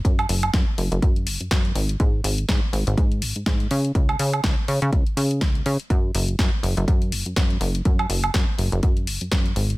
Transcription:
0.05 0.26 F#2 medium
0.05 kick loud
0.05 closed hi-hat medium
0.19 closed hi-hat soft
0.19 high woodblock medium
0.29 0.50 F#1 medium
0.29 open hi-hat loud
0.43 closed hi-hat medium
0.43 high woodblock medium
0.54 0.65 F#2 medium
0.54 kick loud
0.54 snare loud
0.54 closed hi-hat medium
0.78 0.90 F#1 loud
0.78 open hi-hat medium
0.92 1.01 F#1 loud
0.92 closed hi-hat medium
1.02 1.28 F#2 medium
1.02 kick loud
1.02 closed hi-hat medium
1.16 closed hi-hat soft
1.27 1.38 F#1 medium
1.27 open hi-hat loud
1.40 1.49 F#2 soft
1.40 closed hi-hat medium
1.51 1.72 F#2 medium
1.51 kick loud
1.51 snare loud
1.51 closed hi-hat medium
1.65 closed hi-hat soft
1.75 1.97 G#1 loud
1.75 open hi-hat medium
1.89 closed hi-hat medium
2.00 2.21 G#2 medium
2.00 kick loud
2.00 closed hi-hat medium
2.24 2.45 G#1 medium
2.24 open hi-hat loud
2.38 closed hi-hat medium
2.49 2.60 G#2 medium
2.49 kick loud
2.49 snare loud
2.49 closed hi-hat medium
2.73 2.85 G#1 loud
2.73 open hi-hat medium
2.87 2.96 G#1 loud
2.87 closed hi-hat soft
2.98 3.24 G#2 medium
2.98 kick loud
2.98 closed hi-hat medium
3.12 closed hi-hat soft
3.22 3.34 G#1 medium
3.22 open hi-hat loud
3.36 3.44 G#2 soft
3.36 closed hi-hat soft
3.46 3.67 G#2 medium
3.46 kick loud
3.46 snare loud
3.46 closed hi-hat medium
3.60 closed hi-hat soft
3.71 3.92 C#3 loud
3.71 open hi-hat loud
3.85 closed hi-hat medium
3.95 4.16 C#2 loud
3.95 kick loud
3.95 closed hi-hat medium
4.09 closed hi-hat soft
4.09 high woodblock medium
4.19 4.41 C#3 loud
4.19 open hi-hat loud
4.33 closed hi-hat medium
4.33 high woodblock medium
4.44 4.56 C#2 medium
4.44 kick loud
4.44 snare loud
4.44 closed hi-hat medium
4.68 4.80 C#3 medium
4.68 open hi-hat medium
4.82 4.91 C#3 loud
4.82 closed hi-hat soft
4.93 5.04 C#2 medium
4.93 kick loud
4.93 closed hi-hat medium
5.07 closed hi-hat soft
5.17 5.43 C#3 medium
5.17 open hi-hat loud
5.31 closed hi-hat soft
5.41 5.62 C#2 loud
5.41 kick loud
5.41 snare loud
5.41 closed hi-hat medium
5.55 closed hi-hat soft
5.66 5.78 C#3 loud
5.66 open hi-hat medium
5.80 closed hi-hat soft
5.90 6.11 F#2 medium
5.90 kick loud
5.90 closed hi-hat medium
6.15 6.36 F#1 loud
6.15 open hi-hat loud
6.28 closed hi-hat soft
6.39 6.51 F#2 medium
6.39 kick loud
6.39 snare loud
6.39 closed hi-hat medium
6.63 6.75 F#1 medium
6.63 open hi-hat medium
6.77 6.86 F#1 loud
6.77 closed hi-hat soft
6.88 7.14 F#2 medium
6.88 kick loud
6.88 closed hi-hat medium
7.02 closed hi-hat soft
7.12 7.24 F#1 medium
7.12 open hi-hat loud
7.26 7.34 F#2 soft
7.26 closed hi-hat soft
7.36 7.58 F#2 medium
7.36 kick loud
7.36 snare loud
7.36 closed hi-hat medium
7.50 closed hi-hat soft
7.61 7.82 F#1 loud
7.61 open hi-hat medium
7.75 closed hi-hat soft
7.85 8.06 F#2 medium
7.85 kick loud
7.85 closed hi-hat medium
7.99 closed hi-hat soft
7.99 high woodblock medium
8.09 8.31 F#1 medium
8.09 open hi-hat loud
8.24 closed hi-hat soft
8.24 high woodblock medium
8.34 8.46 F#2 medium
8.34 kick loud
8.34 snare loud
8.34 closed hi-hat medium
8.58 8.70 F#1 loud
8.58 open hi-hat medium
8.72 8.81 F#1 loud
8.72 closed hi-hat medium
8.83 9.09 F#2 medium
8.83 kick loud
8.83 closed hi-hat medium
8.97 closed hi-hat soft
9.07 9.19 F#1 medium
9.07 open hi-hat medium
9.21 9.30 F#2 soft
9.21 closed hi-hat medium
9.32 9.53 F#2 medium
9.32 kick loud
9.32 snare loud
9.32 closed hi-hat medium
9.46 closed hi-hat soft
9.56 9.77 G#1 loud
9.56 open hi-hat medium
9.70 closed hi-hat medium

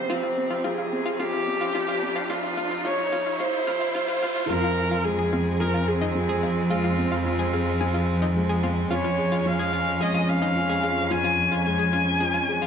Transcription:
0.00 4.46 C3 medium
0.00 0.09 F3 medium
0.00 0.12 C4 medium
0.00 0.11 C5 loud
0.00 riser medium
0.09 4.47 F2 medium
0.09 0.36 F3 medium
0.09 4.46 F3 medium
0.09 0.67 C4 loud
0.09 0.15 F4 loud
0.23 0.33 F4 medium
0.37 0.62 C4 medium
0.50 0.60 F4 loud
0.64 0.91 F3 medium
0.64 0.70 F4 medium
0.64 1.21 G#4 loud
0.78 0.88 F4 medium
0.92 1.18 C4 medium
1.06 1.15 F4 loud
1.20 1.46 F3 medium
1.20 1.25 F4 loud
1.20 2.32 G4 loud
1.33 1.43 F4 medium
1.47 1.73 C4 medium
1.61 1.70 F4 loud
1.75 2.01 F3 medium
1.75 1.80 F4 loud
1.88 1.98 F4 medium
2.02 2.28 C4 medium
2.16 2.25 F4 loud
2.30 2.55 F3 medium
2.30 2.35 F4 loud
2.30 2.87 F4 loud
2.43 2.53 F4 medium
2.57 2.83 F3 medium
2.57 2.63 F4 loud
2.71 2.80 F4 medium
2.85 3.10 F3 medium
2.85 2.90 F4 loud
2.85 3.40 C#5 loud
2.99 3.08 F4 medium
3.12 3.38 F3 medium
3.12 3.18 F4 loud
3.26 3.35 F4 medium
3.40 3.65 F3 medium
3.40 3.46 F4 loud
3.40 4.46 C5 medium
3.53 3.63 F4 medium
3.67 3.93 F3 medium
3.67 3.73 F4 loud
3.81 3.91 F4 medium
3.95 4.20 F3 medium
3.95 4.01 F4 loud
4.08 4.18 F4 medium
4.23 4.48 F3 medium
4.23 4.28 F4 loud
4.36 4.46 F4 medium
4.49 8.88 F2 medium
4.49 4.76 F3 medium
4.49 12.67 F3 medium
4.49 12.67 G#3 medium
4.49 8.87 C4 medium
4.49 4.56 F4 loud
4.49 5.06 A#4 loud
4.64 4.73 F4 medium
4.91 5.01 F4 loud
5.05 5.31 G#3 medium
5.05 5.61 G#4 loud
5.19 5.28 G#4 medium
5.33 5.59 C4 medium
5.33 5.38 F4 medium
5.60 5.76 F4 medium
5.60 5.66 G#4 medium
5.60 5.89 A#4 loud
5.74 5.83 F4 medium
5.88 6.70 G#4 loud
5.88 6.04 G#4 medium
6.01 6.07 D#4 loud
6.15 6.41 F3 medium
6.29 6.38 G#4 loud
6.43 6.48 F4 medium
6.70 6.96 G#3 medium
6.70 6.76 F4 loud
6.70 7.22 F4 loud
6.84 6.93 F4 medium
6.98 7.24 C4 medium
7.12 7.21 F4 loud
7.25 8.59 F4 medium
7.25 7.41 F4 medium
7.39 7.48 G#4 medium
7.53 7.59 F4 medium
7.53 7.69 G#4 medium
7.81 8.07 F3 medium
7.81 7.86 G#4 medium
7.94 8.03 F4 medium
8.22 8.27 D#4 loud
8.36 8.62 G#3 medium
8.49 8.59 G#4 loud
8.63 8.89 C4 medium
8.63 8.69 F4 medium
8.91 12.67 F2 loud
8.91 12.67 C#4 medium
8.91 8.96 F4 loud
8.91 9.06 F4 medium
8.91 9.48 C#5 medium
9.04 9.14 F4 medium
9.18 9.34 G#4 medium
9.32 9.41 F4 loud
9.46 9.72 F3 medium
9.46 10.03 F5 loud
9.59 9.69 G#4 loud
9.73 9.79 F4 medium
10.01 10.27 G#3 medium
10.01 10.06 G#4 loud
10.01 10.30 D#5 loud
10.14 10.24 F4 medium
10.28 10.54 C#4 medium
10.28 11.13 F5 loud
10.42 10.47 D#4 loud
10.56 10.71 F4 medium
10.69 10.79 G#4 loud
10.83 10.89 F4 medium
10.83 10.99 G#4 medium
11.10 11.37 F3 medium
11.10 11.16 F4 loud
11.10 11.65 G#5 loud
11.24 11.34 F4 medium
11.52 11.61 F4 loud
11.65 11.92 G#3 medium
11.65 12.67 G#5 loud
11.79 11.89 G#4 medium
11.93 12.19 C#4 medium
11.93 11.99 F4 medium
12.20 12.36 F4 medium
12.20 12.26 G#4 loud
12.34 12.44 F4 medium
12.48 12.64 G#4 medium
12.62 12.67 F4 medium

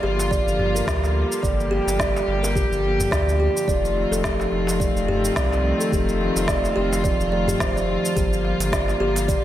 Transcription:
0.00 0.41 G1 medium
0.00 3.64 D3 medium
0.00 9.44 F3 medium
0.00 3.64 G3 medium
0.00 3.64 A#3 medium
0.00 1.41 F4 medium
0.00 0.30 G4 loud
0.00 darbuka ka medium
0.19 darbuka tek medium
0.19 cabasa medium
0.31 0.46 D5 medium
0.31 kick medium
0.31 cabasa medium
0.47 0.82 G1 medium
0.47 cabasa soft
0.59 darbuka dum medium
0.75 0.86 A#4 medium
0.75 cabasa medium
0.87 1.25 D2 medium
0.87 1.02 G4 medium
0.87 kick loud
0.87 snare loud
0.87 cabasa medium
1.04 darbuka tek medium
1.04 cabasa soft
1.32 cabasa medium
1.43 1.81 G1 loud
1.43 3.65 G4 medium
1.43 1.70 D5 medium
1.43 kick loud
1.43 cabasa medium
1.60 cabasa soft
1.71 1.98 G4 medium
1.71 darbuka ka medium
1.87 2.22 G1 medium
1.87 darbuka ka medium
1.87 cabasa medium
1.99 2.14 D5 medium
1.99 kick loud
1.99 snare medium
1.99 cabasa medium
2.16 darbuka tek medium
2.16 cabasa soft
2.28 2.65 G1 medium
2.28 darbuka ka soft
2.43 2.54 A#4 medium
2.43 darbuka tek medium
2.43 cabasa medium
2.55 2.70 G4 medium
2.55 kick loud
2.55 cabasa medium
2.72 3.07 G1 medium
2.72 cabasa soft
3.00 darbuka dum medium
3.00 cabasa medium
3.11 3.49 D2 loud
3.11 3.38 D5 medium
3.11 kick loud
3.11 snare loud
3.11 cabasa medium
3.29 cabasa soft
3.40 3.67 G4 medium
3.57 cabasa medium
3.68 4.05 F1 loud
3.68 8.13 D#3 medium
3.68 8.13 A3 medium
3.68 8.13 C4 medium
3.68 9.44 F4 medium
3.68 3.83 D5 loud
3.68 kick loud
3.68 cabasa medium
3.85 cabasa soft
3.97 darbuka ka soft
4.11 4.47 F1 medium
4.11 4.23 A4 medium
4.11 darbuka ka medium
4.11 cabasa medium
4.23 4.39 G4 medium
4.23 kick loud
4.23 snare loud
4.23 cabasa medium
4.40 darbuka tek medium
4.40 cabasa soft
4.52 4.89 F1 medium
4.52 darbuka ka soft
4.67 darbuka tek medium
4.67 cabasa medium
4.80 5.07 D5 medium
4.80 kick medium
4.80 cabasa medium
4.96 5.31 F1 medium
4.96 cabasa soft
5.08 5.35 G4 medium
5.08 darbuka dum medium
5.25 cabasa medium
5.36 5.73 C2 medium
5.36 5.51 D5 medium
5.36 kick loud
5.36 snare loud
5.36 cabasa medium
5.53 darbuka tek medium
5.53 cabasa soft
5.80 5.91 A4 medium
5.80 cabasa medium
5.92 6.30 F1 medium
5.92 6.07 G4 medium
5.92 kick medium
5.92 cabasa medium
6.09 cabasa soft
6.21 darbuka ka soft
6.36 6.71 F1 medium
6.36 darbuka ka medium
6.36 cabasa medium
6.48 6.75 D5 medium
6.48 kick loud
6.48 snare medium
6.48 cabasa medium
6.64 darbuka tek medium
6.64 cabasa soft
6.76 7.14 F1 medium
6.76 7.03 G4 medium
6.76 darbuka ka medium
6.93 darbuka ka soft
6.93 darbuka tek medium
6.93 cabasa medium
7.04 7.19 D5 medium
7.04 kick loud
7.04 cabasa medium
7.20 7.55 F1 medium
7.20 cabasa soft
7.32 7.47 D5 medium
7.48 7.55 G4 medium
7.48 darbuka dum medium
7.48 cabasa medium
7.60 7.98 F1 medium
7.60 7.69 C5 medium
7.60 kick loud
7.60 snare loud
7.60 cabasa medium
7.76 7.83 D5 medium
7.76 cabasa soft
8.05 cabasa medium
8.16 8.54 G1 loud
8.16 9.44 D3 medium
8.16 9.44 G3 medium
8.16 9.44 A#3 medium
8.16 8.31 G4 medium
8.16 kick medium
8.16 open hi-hat soft
8.16 cabasa soft
8.33 cabasa soft
8.45 darbuka ka medium
8.60 8.95 G1 medium
8.60 open hi-hat medium
8.60 darbuka ka medium
8.60 cabasa medium
8.72 8.99 D5 medium
8.72 kick loud
8.72 snare medium
8.72 open hi-hat soft
8.72 cabasa medium
8.88 darbuka tek medium
8.88 cabasa soft
9.00 9.38 G1 medium
9.00 9.27 G4 loud
9.00 darbuka ka soft
9.16 open hi-hat soft
9.16 darbuka tek medium
9.16 cabasa medium
9.28 9.43 D5 loud
9.28 kick loud
9.28 open hi-hat soft
9.28 cabasa medium

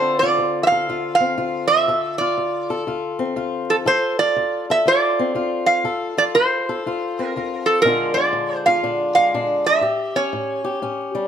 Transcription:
0.00 0.36 D2 medium
0.00 3.87 D3 medium
0.00 1.20 C4 medium
0.00 0.22 F4 medium
0.00 0.72 A4 medium
0.00 0.19 C5 medium
0.19 0.89 F4 medium
0.19 0.62 D5 medium
0.38 0.84 D2 medium
0.63 0.67 E5 medium
0.63 1.14 F5 medium
0.72 1.88 A4 medium
0.89 1.35 D2 medium
0.89 1.37 F4 medium
1.15 1.67 F5 medium
1.20 1.91 C4 medium
1.38 1.84 D2 medium
1.38 2.20 F4 medium
1.67 2.18 E5 medium
1.88 2.34 D2 medium
1.88 2.70 A4 medium
2.18 2.87 F4 medium
2.18 2.82 D5 medium
2.38 2.83 D2 medium
2.70 3.86 A4 medium
2.87 3.33 D2 medium
2.87 3.36 F4 medium
3.19 3.88 C4 medium
3.36 3.82 D2 medium
3.36 4.19 F4 medium
3.70 3.75 A4 medium
3.85 4.32 D2 medium
3.85 4.70 A4 medium
3.85 4.19 C5 loud
4.19 4.87 F4 medium
4.19 4.65 D5 medium
4.36 4.82 D2 medium
4.70 5.83 A4 medium
4.70 4.87 E5 medium
4.86 5.31 D2 medium
4.86 5.35 F4 medium
4.86 5.71 D5 medium
5.19 5.83 C4 medium
5.35 5.81 D2 medium
5.35 6.17 F4 medium
5.66 6.19 F5 medium
5.84 6.30 D2 medium
5.84 6.66 A4 medium
6.17 6.86 F4 medium
6.17 6.23 D5 medium
6.35 6.81 D2 medium
6.35 7.27 C5 medium
6.69 7.82 A4 medium
6.86 7.31 D2 medium
6.86 7.35 F4 medium
7.19 7.83 C4 medium
7.27 7.70 A#4 medium
7.36 7.81 D2 medium
7.36 7.83 F4 medium
7.66 7.81 A4 medium
7.82 8.30 A#2 medium
7.82 9.83 D3 medium
7.82 9.16 G#3 medium
7.82 8.16 A#4 medium
7.86 8.15 D4 medium
7.86 8.66 F4 medium
8.14 8.82 D4 medium
8.14 8.66 D5 medium
8.33 8.79 A#2 medium
8.66 9.81 F4 medium
8.66 9.14 F5 medium
8.83 9.29 A#2 medium
8.83 9.33 D4 medium
9.15 9.81 G#3 medium
9.15 9.66 F5 medium
9.34 9.80 A#2 medium
9.34 9.81 D4 medium
9.66 10.17 E5 medium
9.81 10.28 A2 medium
9.81 10.63 G4 medium
10.16 10.81 C#4 medium
10.16 10.79 C#5 medium
10.33 10.79 A2 medium
10.64 11.28 G4 medium
10.82 11.28 A2 medium
10.82 11.28 C#4 medium
11.15 11.28 G3 medium

